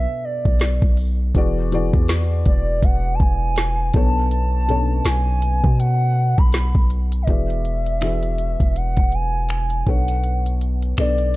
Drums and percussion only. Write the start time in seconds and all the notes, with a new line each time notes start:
0.45 kick
0.60 snare, closed hi-hat
0.82 kick
0.97 open hi-hat
1.35 kick, closed hi-hat
1.72 closed hi-hat
1.94 kick
2.08 snare, closed hi-hat
2.46 kick, closed hi-hat
2.83 kick, closed hi-hat
3.20 kick
3.56 snare, closed hi-hat
3.94 kick, closed hi-hat
4.31 closed hi-hat
4.69 closed hi-hat
5.05 snare, closed hi-hat
5.42 closed hi-hat
5.64 kick
5.80 closed hi-hat
6.38 kick
6.53 snare, closed hi-hat
6.75 kick
6.90 closed hi-hat, open hi-hat
7.12 closed hi-hat
7.27 kick, closed hi-hat
7.50 closed hi-hat
7.65 closed hi-hat
7.86 closed hi-hat
8.01 finger snap, closed hi-hat
8.23 closed hi-hat
8.38 closed hi-hat
8.60 kick, closed hi-hat
8.76 closed hi-hat
8.97 kick, closed hi-hat
9.12 closed hi-hat
9.49 finger snap, closed hi-hat
9.70 closed hi-hat
9.87 kick, closed hi-hat
10.08 closed hi-hat
10.24 closed hi-hat
10.46 closed hi-hat
10.61 closed hi-hat
10.82 closed hi-hat
10.97 finger snap, closed hi-hat
11.18 closed hi-hat